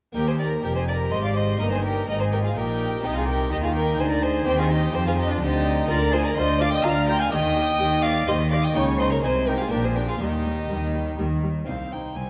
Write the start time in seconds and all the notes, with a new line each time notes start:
0.13 D#2 A#3 D#4 G4 A#4 G5
0.27 G#4 C5 G#5
0.39 A#4 D5 A#5
0.63 F1 F2 G4 A#4 G5
0.75 G#4 C5 G#5
0.87 A#4 D5 A#5
1.10 G#1 G#2 C5 D#5 C6
1.24 D5 F5 D6
1.35 C5 D#5 C6
1.58 G1 G2 A#3 D#4 A#4 D#5 A#5
1.72 G#4 C5 G#5
1.84 G4 A#4 G5
2.07 G#1 G#2 D#4 A#4 D#5 A#5
2.19 G#4 C5 G#5
2.32 G4 A#4 G5
2.42 F4 G#4 F5
2.55 A#1 A#2 D#4 G4 A#4 G5
3.00 C2 C3 C4 D#4 D#5
3.04 G4
3.14 F4 G#4 F5
3.26 G4 A#4 G5
3.51 D#2 D#3 D#4 G4 D#5
3.62 F4 G#4 F5
3.74 G4 A#4 G5
3.98 D2 D3 G#4 C5 G#5
4.10 A#4 D5 A#5
4.22 G#4 C5 G#5
4.43 D#3 C4 D#4 G4 C5 G5
4.47 D#2 D#3
4.59 F4 G#4 F5
4.70 D#4 G4 D#5
4.94 F2 F3 C4 G4 C5 G5
5.05 F4 G#4 F5
5.17 D#4 G4 D#5
5.29 D4 F4 D5
5.41 D2 D3 C4 D#4 G4 D#5
5.87 D2 D3 A#3 F4 A#4 D5 A#5
6.12 F4 G#4 C5 G#5
6.25 A#4 D5 A#5
6.37 D2 D3 F4 C5 D#5 C6
6.60 F4 D5 F5 D6
6.71 D#5 G5 D#6
6.84 D2 D3 F4 F5 A#5 F6
7.08 F4 G5 A#5 G6
7.20 F5 G#5 F6
7.29 D#2 D#3 A#3 D#4 G4 D#5 G5
7.34 D#6
7.56 G4
7.79 D#2 D#3 G4
8.02 G4 D5 F5 D6
8.27 D#2 D#3 G4 C5 D#5 C6
8.51 G4 D5 F5 D6
8.62 D#5 G5 D#6
8.72 C#2 C#3 A#3 D#4 C#5 G5 C#6
8.99 D#4 C5 D#5 C6
9.11 A#4 C#5 A#5
9.19 C2 G#3 D#4 G#4
9.23 C3 D#4 C5 G#5
9.47 D#4 G4 A#4 G5
9.59 F4 G#4 F5
9.67 A#1 A#2 A#3 D4 G4 A#4 G5
9.72 A#2 D4
9.83 G#4 C5 G#5
9.96 D4 G4 A#4 G5
10.08 F4 G#4 F5
10.17 D#2 D#3 G3 A#3 D#4 G4 D#5
10.45 G3
10.69 D#2 D#3 G3
10.94 G3
11.18 D#2 D#3 G3
11.43 G3
11.64 C2 C4 D#4 G4 F5
11.91 C2 D#4 C5 G5
12.15 C2 C4 G4 G#5